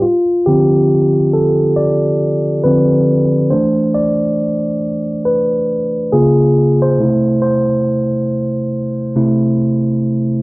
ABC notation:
X:1
M:4/4
L:1/16
Q:"Swing 16ths" 1/4=69
K:C
V:1 name="Tine electric piano"
F2 G4 A2 d4 B4 | c2 d6 B4 _A3 c- | c2 c12 z2 |]
V:2 name="Tine electric piano"
z2 [D,F,C]2 z8 [D,F,C]2 z2 | [E,A,D]6 z6 [_D,_B,F]2 z2 | [C,A,E]6 z4 [C,A,E]2 z4 |]